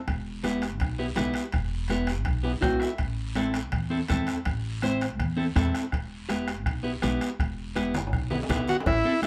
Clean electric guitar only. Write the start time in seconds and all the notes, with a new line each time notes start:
0.43 B3 E4 G4
0.99 B3 E4 G4
1.16 B3 E4 G4
1.90 B3 E4 G4
2.43 B3 E4 G4
2.61 B3 E4 F#4 G5
2.80 E5
3.35 C4 E4 A4
3.90 C4 E4 A4
4.09 C4 E4 A4
4.83 C4 E4 C5
5.37 C4 E4 A4
5.56 C4 E4 A4
6.29 B3 E4 G4
6.83 B3 E4 G4
7.02 B3 E4 G4
7.75 B3 E4 G4
8.30 B3 E4 G4
8.49 B3 E4 G4
9.05 C4 E4 A4
9.23 C4 E4 A4